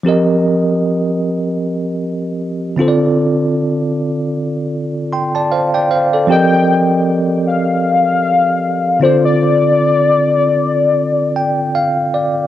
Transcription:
0.04 2.73 F3 medium
0.04 2.74 C4 medium
0.04 2.75 G4 medium
0.04 2.75 A#4 medium
0.09 2.76 D#5 medium
2.76 5.85 D3 medium
2.76 5.86 C4 medium
2.76 5.86 F4 medium
2.76 5.09 A4 medium
2.81 2.88 C5 medium
2.88 5.13 D5 medium
5.13 5.34 G5 medium
5.13 5.34 C6 medium
5.35 5.51 D5 medium
5.35 5.51 A5 medium
5.52 5.73 C5 medium
5.52 5.73 F5 medium
5.74 5.90 D5 medium
5.74 5.90 G5 medium
5.91 6.12 C5 medium
5.91 6.12 F5 medium
6.13 6.50 A4 soft
6.13 6.50 D5 medium
6.27 8.97 F3 medium
6.27 8.97 C4 medium
6.27 8.98 G4 medium
6.27 8.99 A#4 medium
6.27 7.04 G5 loud
6.32 8.99 D#5 medium
7.47 8.98 F5 loud
9.00 12.09 D3 medium
9.00 12.09 C4 medium
9.00 12.10 F4 medium
9.00 12.10 A4 medium
9.00 9.23 C5 medium
9.05 12.11 D5 medium
9.25 12.10 D5 loud
11.36 11.72 G5 medium
11.75 12.11 F5 medium
12.14 12.47 D5 medium

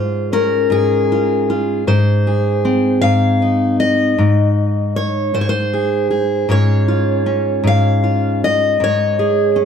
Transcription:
0.00 0.70 G#2 medium
0.00 1.10 F4 soft
0.00 0.33 C5 medium
0.33 1.82 C#4 medium
0.33 1.49 A#4 medium
0.70 1.87 G#2 medium
0.70 1.88 G#4 medium
1.12 1.49 F4 soft
1.50 1.83 F4 soft
1.87 3.03 G#2 medium
1.87 3.42 C5 medium
2.27 3.01 G#4 soft
2.65 4.14 C4 medium
3.02 4.18 G#2 medium
3.02 3.79 F5 medium
3.42 5.34 D#4 soft
3.80 4.96 D#5 loud
4.18 5.33 G#2 medium
4.96 5.34 C#5 medium
5.34 6.48 G#2 medium
5.34 5.48 C5 medium
5.41 5.48 C#5 medium
5.49 6.50 C5 medium
5.73 6.10 G#4 soft
6.11 7.67 G#4 soft
6.49 7.63 G#2 medium
6.49 7.26 C#4 soft
6.49 6.88 F4 soft
6.49 8.43 C#5 loud
6.88 8.02 F4 soft
7.26 8.76 C#4 medium
7.64 8.79 G#2 medium
7.64 8.43 F5 loud
8.04 8.76 F4 soft
8.44 9.59 D#5 medium
8.80 9.65 G#2 medium
8.80 9.65 C#5 medium
9.19 9.65 G#4 soft
9.56 9.65 C#4 medium

